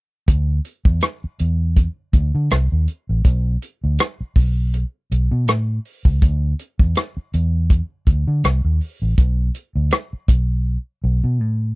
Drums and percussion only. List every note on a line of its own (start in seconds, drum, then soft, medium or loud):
0.28 kick loud
0.28 closed hi-hat medium
0.65 closed hi-hat medium
0.85 kick medium
1.01 cross-stick loud
1.01 closed hi-hat medium
1.39 closed hi-hat medium
1.76 kick medium
1.76 closed hi-hat medium
2.13 kick medium
2.13 closed hi-hat medium
2.51 cross-stick loud
2.51 closed hi-hat medium
2.88 closed hi-hat medium
3.25 kick loud
3.25 closed hi-hat medium
3.62 closed hi-hat medium
3.98 cross-stick loud
3.98 closed hi-hat medium
4.36 kick medium
4.36 open hi-hat medium
4.74 closed hi-hat medium
5.12 closed hi-hat medium
5.48 cross-stick medium
5.48 closed hi-hat medium
5.85 open hi-hat soft
6.05 kick medium
6.22 kick medium
6.22 closed hi-hat medium
6.59 closed hi-hat medium
6.79 kick medium
6.95 cross-stick loud
6.95 closed hi-hat medium
7.34 closed hi-hat medium
7.70 kick medium
7.70 closed hi-hat medium
8.07 kick medium
8.07 closed hi-hat medium
8.44 cross-stick medium
8.44 closed hi-hat medium
8.81 open hi-hat soft
9.18 kick loud
9.18 closed hi-hat medium
9.55 closed hi-hat medium
9.91 cross-stick loud
9.91 closed hi-hat medium
10.28 kick medium
10.28 closed hi-hat medium